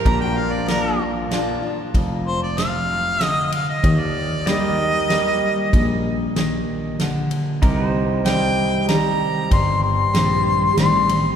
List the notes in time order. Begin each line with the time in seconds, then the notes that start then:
0.05 A#1 A#2 D4 G4 A#4 A#5, kick, ride
0.21 G5
0.32 F4
0.37 F5
0.52 D5
0.68 F3 A#3 D4 F4 A#4, snare, ride
0.99 D4 F4
1.31 F3 A#3 D4 F4, snare, ride
1.62 D4 F4
1.94 F1 F2, kick, ride
2.26 C5
2.43 D5
2.57 C3 F5, snare, ride
3.20 D3, snare, ride
3.25 D#5
3.52 F5, ride
3.69 D#5
3.84 D#2 D#3, kick, ride
4.00 D5
4.46 G3 A#3 D#4 G4 A#4 D5 D#5, snare, ride
4.66 D#5
4.78 D#4 G4
5.10 G3 A#3 D#4 G4, snare, ride
5.73 A#1 A#2, kick, ride
6.36 D#3, snare, ride
7.00 D3, snare, ride
7.31 ride
7.62 C2 C3 D#4 G4 A#4, kick, ride
7.89 C5
8.25 D#3 G3 C4 G4 G5, snare, ride
8.88 D#3 G3 C4 G4 A#5, snare, ride
9.51 G1 G2 C6, kick, ride
9.83 C6
10.13 A#1 D#3 G3 C4 G4, snare, ride
10.77 A1 D#3 G3 C4 G4 C6, snare, ride
11.09 C4 G4, ride